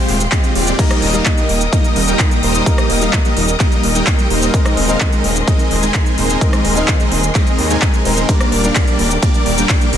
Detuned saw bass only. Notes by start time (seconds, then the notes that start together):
0.09 D#1
0.55 D#1
1.02 D#1
1.49 D#1
1.96 D#1
2.43 D#1
2.90 D#1
3.37 D#1
3.83 D#1
4.30 D#1
4.77 D#1
5.24 D#1
5.71 D#1
6.18 D#1
6.65 D#1
7.12 D#1
7.59 D#2
8.05 D#1
8.52 D#1
8.99 D#1
9.46 D#1
9.93 D#1